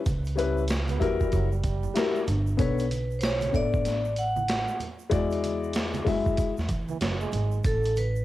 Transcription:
0.06 upright bass C#2, kick, closed hi-hat, shaker
0.25 closed hi-hat, shaker
0.36 grand piano G3 C#4 E4 B4, closed hi-hat, high conga, shaker
0.57 shaker
0.68 snare, closed hi-hat, shaker
0.88 trombone B3, closed hi-hat, high conga, shaker
0.99 upright bass E2, grand piano G3 E4 F#4 A#4, kick, closed hi-hat, low conga, shaker
1.20 trombone G3, kick, shaker
1.32 upright bass F#1, trombone F#3, kick, closed hi-hat, shaker
1.52 trombone G3, shaker
1.63 kick, closed hi-hat, shaker
1.83 high conga, shaker
1.94 grand piano G3 E4 F#4 A#4, snare, closed hi-hat, shaker
2.15 shaker
2.27 upright bass G1, closed hi-hat, low conga, shaker
2.47 shaker
2.57 upright bass B1, grand piano B3 D4 A4 C#5, kick, closed hi-hat, shaker
2.61 vibraphone B4
2.78 closed hi-hat, shaker
2.91 closed hi-hat, high conga, shaker
3.11 shaker
3.19 vibraphone C5, closed hi-hat, shaker
3.23 vibraphone C#5, snare
3.41 closed hi-hat, high conga, shaker
3.52 upright bass A1, grand piano B3 D4 A4 E5, vibraphone D5, kick, closed hi-hat, low conga, shaker
3.73 kick, shaker
3.85 snare, closed hi-hat, shaker
4.05 shaker
4.16 vibraphone F#5, closed hi-hat, shaker
4.36 high conga, shaker
4.48 snare, closed hi-hat, shaker
4.68 shaker
4.80 closed hi-hat, low conga, shaker
4.99 shaker
5.10 upright bass E2, grand piano G#3 E4 F#4 D5, kick, closed hi-hat, shaker
5.31 closed hi-hat, shaker
5.44 closed hi-hat, high conga, shaker
5.64 shaker
5.73 snare, closed hi-hat, shaker
5.94 closed hi-hat, high conga, shaker
6.05 upright bass F#2, grand piano G#3 E4 F#4 E5, kick, open hi-hat, low conga, shaker
6.26 kick, shaker
6.37 kick, closed hi-hat, shaker
6.57 upright bass E2, snare, shaker
6.69 upright bass E3, kick, closed hi-hat, shaker
6.89 trombone E3, high conga, shaker
7.01 upright bass F#1, trombone F#3, snare, closed hi-hat, low conga, shaker
7.21 trombone G#3, shaker
7.32 upright bass G#1, closed hi-hat, low conga, shaker
7.51 shaker
7.64 upright bass A1, vibraphone A4, kick, closed hi-hat, shaker
7.83 closed hi-hat, shaker
7.96 vibraphone B4, closed hi-hat, high conga, shaker
8.16 shaker

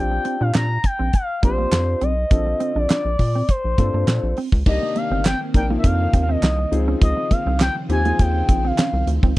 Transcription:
Already playing: analog synth bass A#1, grand piano C4 D4 F4 G4, analog synth lead G5
0.11 muted clean electric guitar stroke
0.25 clean electric guitar C4, closed hi-hat
0.41 analog synth bass A#2, clean electric guitar D4, analog synth lead F5
0.54 analog synth bass A#2, clean electric guitar D4, snare, clap, closed hi-hat
0.56 analog synth lead A#5, clap
0.84 analog synth lead G5, muted clean electric guitar stroke, kick, closed hi-hat
0.99 analog synth bass A#1, clean electric guitar C4
1.13 analog synth lead F5, muted clean electric guitar stroke, kick, closed hi-hat
1.42 analog synth bass A#1, clean electric guitar A#3, grand piano C4 D4 F4 G4, analog synth lead C5, kick, closed hi-hat
1.58 clean electric guitar A#3
1.72 analog synth bass F2, snare, clap, closed hi-hat
2.01 analog synth bass B1, clean electric guitar C4, analog synth lead D#5, closed hi-hat
2.31 analog synth bass A#1, grand piano D3 C4 F4 A4, kick, closed hi-hat
2.46 muted clean electric guitar stroke
2.60 clean electric guitar C4, closed hi-hat
2.76 analog synth bass A#1, clean electric guitar D4, analog synth lead D5
2.90 clean electric guitar D4, snare, clap, closed hi-hat
2.91 clap
3.05 analog synth bass A#1
3.19 analog synth bass A#2, muted clean electric guitar stroke, kick, open hi-hat
3.35 clean electric guitar C4
3.49 analog synth lead C5, muted clean electric guitar stroke, kick, closed hi-hat
3.65 analog synth bass A#1
3.78 analog synth bass G2, clean electric guitar A#3, grand piano C4 D4 F4 A4, kick, closed hi-hat
3.94 analog synth bass G2, clean electric guitar A#3
4.07 analog synth bass A#2, snare, clap, closed hi-hat
4.23 analog synth bass A#1
4.37 clean electric guitar C4, open hi-hat
4.52 analog synth bass C#2, kick
4.66 analog synth bass C2, string machine C3 D#3 A#3 C4, grand piano A#3 D4 D#4 G4, analog synth lead D#5, kick, crash
4.83 muted clean electric guitar stroke
4.96 clean electric guitar A#3, analog synth lead F5, closed hi-hat
5.11 analog synth bass G1, clean electric guitar C4
5.25 clean electric guitar C4, snare, clap, closed hi-hat
5.27 analog synth lead G5, clap
5.41 muted clean electric guitar stroke
5.54 analog synth bass A#1, grand piano A#3 D4 D#4 A#4, analog synth lead G5, kick, closed hi-hat
5.69 grand piano A#3 D4 D#4 F4, clean electric guitar A#3
5.78 analog synth lead E5
5.84 analog synth bass F2, analog synth lead F5, muted clean electric guitar stroke, kick, closed hi-hat
6.13 analog synth bass D#2, clean electric guitar C4, kick, closed hi-hat
6.23 analog synth lead F5
6.29 clean electric guitar C4, analog synth lead D#5
6.42 analog synth bass C2, clean electric guitar D#4, snare, clap, closed hi-hat
6.45 clap
6.59 muted clean electric guitar stroke
6.71 analog synth bass C#2, string machine C#3 D#3 F3 C4, grand piano C4 D#4 F4 G#4, closed hi-hat
6.88 clean electric guitar C#4
7.01 analog synth bass C#2, analog synth lead D#5, kick, closed hi-hat
7.17 muted clean electric guitar stroke
7.31 clean electric guitar A#3, analog synth lead F5, kick, closed hi-hat
7.46 analog synth bass C2, clean electric guitar C4
7.60 clean electric guitar C4, snare, clap, closed hi-hat
7.62 analog synth lead G5, clap
7.76 muted clean electric guitar stroke
7.89 analog synth bass D#2, grand piano C4 D#4 F4 G4, analog synth lead G#5, closed hi-hat
8.05 clean electric guitar A#3, grand piano C4 D#4 F4 G#4, closed hi-hat
8.19 analog synth bass D#2, analog synth lead G5, muted clean electric guitar stroke, kick, closed hi-hat
8.49 analog synth bass A#1, clean electric guitar C4, kick, closed hi-hat
8.65 clean electric guitar C4, analog synth lead F5
8.78 clean electric guitar C#4, snare, clap, closed hi-hat
8.80 clap
8.93 analog synth bass C2, muted clean electric guitar stroke
9.07 analog synth bass D2, closed hi-hat
9.23 analog synth bass C#2, clean electric guitar C4, kick

